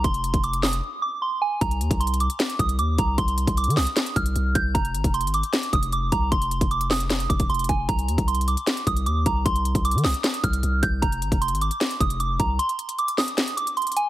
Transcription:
0.04 808-style bass F1, synth bell C6, kick, closed hi-hat
0.14 closed hi-hat
0.24 closed hi-hat
0.34 808-style bass F1, kick, closed hi-hat
0.44 synth bell D6, closed hi-hat
0.53 closed hi-hat
0.63 synth bell D#6, snare, clap, open hi-hat
0.73 closed hi-hat
1.02 synth bell D6
1.22 synth bell C6
1.42 synth bell G#5
1.61 808-style bass C2, synth bell A#5, kick, closed hi-hat
1.71 closed hi-hat
1.81 808-style bass D#2, closed hi-hat
1.91 808-style bass C2, kick, closed hi-hat
2.00 synth bell C6, closed hi-hat
2.07 closed hi-hat
2.14 closed hi-hat
2.20 synth bell D6, closed hi-hat
2.30 closed hi-hat
2.40 snare, clap, closed hi-hat
2.50 closed hi-hat
2.59 808-style bass C2, synth bell D#6, kick, closed hi-hat
2.69 closed hi-hat
2.79 808-style bass D#2, synth bell D6, closed hi-hat
2.98 808-style bass C2, synth bell A#5, kick, closed hi-hat
3.18 808-style bass C2, synth bell C6, kick, closed hi-hat
3.28 closed hi-hat
3.38 closed hi-hat
3.47 808-style bass C2, kick, closed hi-hat
3.57 synth bell D6, closed hi-hat
3.64 808-style bass D#3, closed hi-hat
3.70 closed hi-hat
3.77 808-style bass C2, synth bell D#6, snare, clap, open hi-hat
3.87 closed hi-hat
3.96 snare, clap, closed hi-hat
4.06 closed hi-hat
4.16 808-style bass C2, synth bell F6, kick, closed hi-hat
4.26 closed hi-hat
4.36 808-style bass C2, closed hi-hat
4.55 808-style bass C2, synth bell G6, kick, closed hi-hat
4.75 808-style bass F1, synth bell A#5, kick, closed hi-hat
4.85 closed hi-hat
4.95 808-style bass G#1, closed hi-hat
5.04 808-style bass F1, kick, closed hi-hat
5.14 synth bell C6, closed hi-hat
5.21 808-style bass G#1, closed hi-hat
5.27 closed hi-hat
5.34 synth bell D6, closed hi-hat
5.43 closed hi-hat
5.53 snare, clap, closed hi-hat
5.63 closed hi-hat
5.73 808-style bass F1, synth bell D#6, kick, closed hi-hat
5.83 closed hi-hat
5.92 synth bell D6, closed hi-hat
6.12 808-style bass C2, synth bell A#5, kick, closed hi-hat
6.32 808-style bass F1, synth bell C6, kick, closed hi-hat
6.42 closed hi-hat
6.51 closed hi-hat
6.61 808-style bass F1, kick, closed hi-hat
6.71 synth bell D6, closed hi-hat
6.81 closed hi-hat
6.91 synth bell D#6, snare, clap, open hi-hat
7.00 closed hi-hat
7.10 snare, clap, closed hi-hat
7.20 closed hi-hat
7.29 808-style bass F1, synth bell D6, kick, closed hi-hat
7.40 kick, closed hi-hat
7.50 808-style bass F1, synth bell C6, closed hi-hat
7.54 closed hi-hat
7.59 closed hi-hat
7.64 closed hi-hat
7.69 808-style bass F1, synth bell G#5, kick, closed hi-hat
7.89 808-style bass C2, synth bell A#5, kick, closed hi-hat
7.99 closed hi-hat
8.08 808-style bass D#2, closed hi-hat
8.18 808-style bass C2, kick, closed hi-hat
8.28 synth bell C6, closed hi-hat
8.35 closed hi-hat
8.41 closed hi-hat
8.48 synth bell D6, closed hi-hat
8.57 closed hi-hat
8.67 snare, clap, closed hi-hat
8.77 closed hi-hat
8.87 808-style bass C2, synth bell D#6, kick, closed hi-hat
8.97 closed hi-hat
9.06 808-style bass D#2, synth bell D6, closed hi-hat
9.26 808-style bass C2, synth bell A#5, kick, closed hi-hat
9.45 808-style bass C2, synth bell C6, kick, closed hi-hat
9.56 closed hi-hat
9.65 closed hi-hat
9.75 808-style bass C2, kick, closed hi-hat
9.85 synth bell D6, closed hi-hat
9.91 808-style bass D#3, closed hi-hat
9.98 closed hi-hat
10.04 808-style bass C2, synth bell D#6, snare, clap, open hi-hat
10.14 closed hi-hat
10.24 snare, clap, closed hi-hat
10.34 closed hi-hat
10.44 808-style bass C2, synth bell F6, kick, closed hi-hat
10.53 closed hi-hat
10.63 808-style bass C2, closed hi-hat
10.83 808-style bass C2, synth bell G6, kick, closed hi-hat
11.02 808-style bass F1, synth bell A#5, kick, closed hi-hat
11.12 closed hi-hat
11.22 808-style bass G#1, closed hi-hat
11.32 808-style bass F1, kick, closed hi-hat
11.41 synth bell C6, closed hi-hat
11.48 808-style bass G#1, closed hi-hat
11.55 closed hi-hat
11.61 synth bell D6, closed hi-hat
11.71 closed hi-hat
11.81 snare, clap, closed hi-hat
11.91 closed hi-hat
12.00 808-style bass F1, synth bell D#6, kick, closed hi-hat
12.10 closed hi-hat
12.20 synth bell D6, closed hi-hat
12.39 808-style bass C2, synth bell A#5, kick, closed hi-hat
12.59 synth bell C6, closed hi-hat
12.69 closed hi-hat
12.79 closed hi-hat
12.89 closed hi-hat
12.99 synth bell D6, closed hi-hat
13.08 closed hi-hat
13.18 synth bell D#6, snare, clap, open hi-hat
13.28 closed hi-hat
13.38 snare, clap, closed hi-hat
13.48 closed hi-hat
13.57 synth bell D6, closed hi-hat
13.67 closed hi-hat
13.77 synth bell C6, closed hi-hat
13.82 closed hi-hat
13.87 closed hi-hat
13.92 closed hi-hat
13.96 synth bell G#5, closed hi-hat

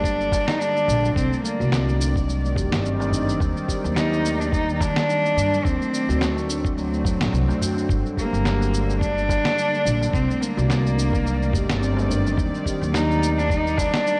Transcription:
Already playing: upright bass G1, synth drone D3 D5, cello D4
0.04 steel tongue drum G3, kick, shaker
0.20 steel tongue drum A#3, shaker
0.32 steel tongue drum G3, kick, darbuka tek, shaker
0.47 steel tongue drum A#3, cello D#4, snare, shaker
0.59 steel tongue drum G3, cello D4, shaker
0.76 steel tongue drum A#3, shaker
0.88 upright bass A#1, steel tongue drum D4, shaker
1.04 steel tongue drum F#3, darbuka ka, shaker
1.16 upright bass C2, synth drone D#3, steel tongue drum G3, cello C4, kick, shaker
1.32 steel tongue drum A3, shaker
1.43 steel tongue drum G3, cello A#3, shaker
1.60 upright bass C2, steel tongue drum F#4, shaker
1.72 steel tongue drum C4, snare, darbuka tek, shaker
1.88 steel tongue drum A3, darbuka ka, shaker
2.00 steel tongue drum D4, shaker
2.16 steel tongue drum F#3, synth drone C4, kick, shaker
2.28 steel tongue drum G3, darbuka tek, shaker
2.44 steel tongue drum A3, shaker
2.55 steel tongue drum G4, kick, darbuka dum, shaker
2.72 upright bass G1, steel tongue drum F#3, snare, shaker
2.84 steel tongue drum C4, shaker
3.00 steel tongue drum A3, darbuka tek, shaker
3.12 steel tongue drum D4, darbuka dum, shaker
3.28 steel tongue drum F#3, darbuka ka, shaker
3.40 upright bass D#2, steel tongue drum G3, kick, shaker
3.56 steel tongue drum G3, shaker
3.68 steel tongue drum G4, kick, shaker
3.84 upright bass D#2, steel tongue drum F#3, shaker
3.96 cello D#4, steel tongue drum G4, snare, shaker
4.12 steel tongue drum A#3, darbuka tek, shaker
4.24 steel tongue drum A3, shaker
4.40 steel tongue drum A#3, cello D4, darbuka tek, shaker
4.53 steel tongue drum G3, cello D#4, kick, shaker
4.68 steel tongue drum A#3, shaker
4.75 cello D#4
4.81 steel tongue drum G3, cello D4, kick, darbuka tek, shaker
4.96 steel tongue drum A#3, snare, shaker
5.09 steel tongue drum G3, shaker
5.24 steel tongue drum A#3, shaker
5.36 upright bass G2, steel tongue drum D4, shaker
5.52 steel tongue drum F#3, darbuka ka, shaker
5.65 upright bass D2, synth drone D3, steel tongue drum F#3, cello C4, kick, shaker
5.80 steel tongue drum A3, shaker
5.86 synth drone F#3
5.91 steel tongue drum F#3, synth drone C4, shaker
6.09 upright bass D2, steel tongue drum F#4, shaker
6.21 cello A3, synth drone A3, steel tongue drum C4, snare, darbuka tek, shaker
6.37 steel tongue drum A3, darbuka ka, shaker
6.49 steel tongue drum D4, shaker
6.65 steel tongue drum F#3, synth drone F#4, kick, shaker
6.77 steel tongue drum F#3, cello F#3, darbuka tek, shaker
6.93 steel tongue drum A3, shaker
7.05 steel tongue drum F#3, kick, darbuka dum, shaker
7.21 upright bass A1, steel tongue drum F#3, snare, shaker
7.33 upright bass C2, steel tongue drum A3, shaker
7.48 upright bass D2, steel tongue drum A3, darbuka tek, shaker
7.61 steel tongue drum F#4, darbuka dum, shaker
7.77 steel tongue drum D4, darbuka ka, shaker
7.89 upright bass G1, steel tongue drum G3, kick, shaker
8.05 steel tongue drum G3, shaker
8.17 cello A#3, steel tongue drum G4, kick, shaker
8.33 upright bass G1, steel tongue drum F#3, shaker
8.45 steel tongue drum G4, snare, shaker
8.61 steel tongue drum A#3, darbuka tek, shaker
8.73 steel tongue drum A3, shaker
8.89 steel tongue drum A#3, synth drone D5, darbuka tek, shaker
9.01 steel tongue drum G3, cello D4, kick, shaker
9.17 steel tongue drum A#3, shaker
9.29 steel tongue drum G3, kick, darbuka tek, shaker
9.45 steel tongue drum A#3, snare, shaker
9.57 steel tongue drum G3, shaker
9.73 steel tongue drum A#3, shaker
9.85 upright bass A#1, steel tongue drum D4, shaker
10.01 steel tongue drum F#3, darbuka ka, shaker
10.13 upright bass C2, synth drone D#3, steel tongue drum G3, cello C4, kick, shaker
10.29 steel tongue drum A3, shaker
10.41 steel tongue drum G3, cello A#3, shaker
10.57 upright bass C2, steel tongue drum F#4, shaker
10.69 steel tongue drum C4, snare, darbuka tek, shaker
10.85 steel tongue drum A3, darbuka ka, shaker
10.91 synth drone C4
10.97 steel tongue drum D4, shaker
11.13 steel tongue drum F#3, kick, shaker
11.25 steel tongue drum G3, darbuka tek, shaker
11.41 steel tongue drum A3, shaker
11.53 steel tongue drum G4, kick, darbuka dum, shaker
11.69 upright bass G1, steel tongue drum F#3, snare, shaker
11.82 steel tongue drum C4, shaker
11.97 steel tongue drum A3, darbuka tek, shaker
12.09 steel tongue drum D4, darbuka dum, shaker
12.25 steel tongue drum F#3, darbuka ka, shaker
12.38 upright bass D#2, steel tongue drum G3, kick, shaker
12.54 steel tongue drum G3, shaker
12.66 steel tongue drum G4, kick, shaker
12.81 upright bass D#2, steel tongue drum F#3, shaker
12.94 cello D#4, steel tongue drum G4, snare, shaker
13.09 steel tongue drum A#3, darbuka tek, shaker
13.22 steel tongue drum A3, shaker
13.37 steel tongue drum A#3, cello D4, darbuka tek, shaker
13.50 steel tongue drum G3, cello D#4, kick, shaker
13.66 steel tongue drum A#3, shaker
13.78 steel tongue drum G3, cello D4, kick, darbuka tek, shaker
13.94 steel tongue drum A#3, snare, shaker
14.06 steel tongue drum G3, shaker

